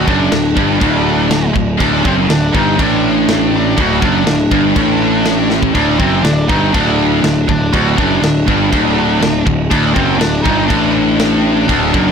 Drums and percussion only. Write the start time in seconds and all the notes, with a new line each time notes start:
0.08 kick
0.32 snare, crash
0.57 kick
0.81 kick, crash
1.31 snare, crash
1.56 kick
1.80 kick, crash
2.05 kick
2.30 snare, crash
2.55 kick
2.79 kick, crash
3.28 snare, crash
3.78 kick, crash
4.02 kick
4.27 snare, crash
4.51 kick
4.76 kick, crash
5.25 snare, crash
5.50 snare
5.63 kick
5.75 kick, crash
6.00 kick
6.24 snare, crash
6.49 kick
6.74 kick, crash
7.24 snare, crash
7.49 kick
7.74 kick, crash
7.98 kick
8.23 snare, crash
8.48 kick
8.73 kick, crash
9.22 snare, crash
9.47 kick
9.71 kick, crash
9.96 kick
10.21 snare, crash
10.46 kick
10.70 kick, crash
11.20 snare, crash
11.69 kick, crash
11.94 kick